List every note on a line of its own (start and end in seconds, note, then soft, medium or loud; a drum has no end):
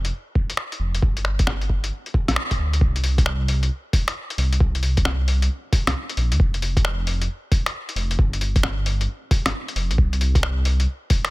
0.00 0.12 F1 medium
0.05 closed hi-hat soft
0.35 kick loud
0.50 closed hi-hat medium
0.57 finger snap loud
0.72 closed hi-hat soft
0.80 1.01 F1 loud
0.95 closed hi-hat medium
1.02 1.91 G1 loud
1.02 kick loud
1.17 closed hi-hat soft
1.25 finger snap medium
1.39 kick medium
1.39 closed hi-hat medium
1.47 finger snap loud
1.47 cross-stick soft
1.61 closed hi-hat soft
1.70 kick medium
1.84 closed hi-hat medium
2.06 closed hi-hat soft
2.14 kick medium
2.28 2.36 A#1 medium
2.28 cross-stick medium
2.28 closed hi-hat medium
2.36 finger snap loud
2.51 kick medium
2.51 closed hi-hat soft
2.59 2.80 D2 medium
2.73 closed hi-hat medium
2.81 3.70 C2 loud
2.81 kick loud
2.96 closed hi-hat soft
3.04 open hi-hat medium
3.18 kick loud
3.18 closed hi-hat medium
3.26 finger snap loud
3.48 open hi-hat medium
3.63 closed hi-hat medium
3.93 kick loud
3.93 open hi-hat medium
4.08 finger snap loud
4.08 closed hi-hat medium
4.30 closed hi-hat soft
4.38 4.59 C2 loud
4.38 open hi-hat medium
4.53 closed hi-hat medium
4.60 5.49 C2 loud
4.60 kick loud
4.75 closed hi-hat soft
4.83 open hi-hat medium
4.97 kick loud
4.97 closed hi-hat medium
5.05 finger snap loud
5.05 cross-stick soft
5.28 open hi-hat medium
5.42 closed hi-hat medium
5.73 kick loud
5.73 open hi-hat medium
5.87 5.94 C2 medium
5.87 finger snap loud
5.87 cross-stick medium
5.87 closed hi-hat medium
6.09 closed hi-hat soft
6.17 6.33 A#1 medium
6.17 open hi-hat medium
6.32 6.39 D#2 medium
6.32 closed hi-hat medium
6.40 7.28 F1 loud
6.40 kick loud
6.54 closed hi-hat soft
6.62 open hi-hat medium
6.77 kick loud
6.77 closed hi-hat medium
6.85 finger snap loud
7.07 open hi-hat medium
7.22 closed hi-hat medium
7.52 kick loud
7.52 open hi-hat medium
7.66 finger snap loud
7.66 closed hi-hat medium
7.89 closed hi-hat soft
7.96 8.17 F1 medium
7.96 open hi-hat medium
8.11 closed hi-hat medium
8.18 9.07 G1 loud
8.18 kick loud
8.33 closed hi-hat soft
8.41 open hi-hat medium
8.56 kick loud
8.56 closed hi-hat medium
8.63 finger snap loud
8.63 cross-stick soft
8.86 open hi-hat medium
9.01 closed hi-hat soft
9.31 kick loud
9.31 open hi-hat medium
9.46 9.53 G1 medium
9.46 finger snap loud
9.46 cross-stick medium
9.46 closed hi-hat medium
9.68 closed hi-hat soft
9.76 9.92 F1 loud
9.76 open hi-hat medium
9.91 9.97 A#1 medium
9.91 closed hi-hat medium
9.98 10.86 C2 loud
9.98 kick loud
10.13 closed hi-hat soft
10.21 open hi-hat medium
10.35 kick loud
10.35 closed hi-hat soft
10.43 finger snap loud
10.65 open hi-hat medium
10.80 closed hi-hat soft
11.10 kick loud
11.10 open hi-hat medium
11.25 finger snap loud
11.25 closed hi-hat medium